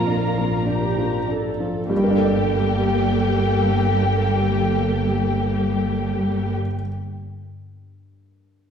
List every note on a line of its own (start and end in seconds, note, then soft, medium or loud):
0.00 1.67 A#1 soft
0.00 1.93 F2 soft
0.00 0.37 F3 soft
0.00 1.30 A#3 soft
0.00 0.07 D4 soft
0.00 0.68 F4 soft
0.00 1.30 A#4 soft
0.00 1.27 A#5 medium
0.07 0.56 D4 soft
0.37 0.86 F3 soft
0.66 1.16 D4 soft
0.66 1.30 G4 soft
0.97 1.48 F3 soft
1.28 1.78 D4 soft
1.28 1.90 A4 soft
1.60 1.91 F3 soft
1.89 6.53 G1 soft
1.89 6.52 G2 soft
1.89 6.54 G3 soft
1.89 6.55 A#3 medium
1.89 6.52 G4 medium
1.89 6.54 A4 medium
1.89 6.55 G5 medium
1.97 6.59 G3 soft
2.04 6.67 A#3 soft
2.11 6.73 D4 soft
2.18 6.80 A4 soft
2.25 6.88 D5 soft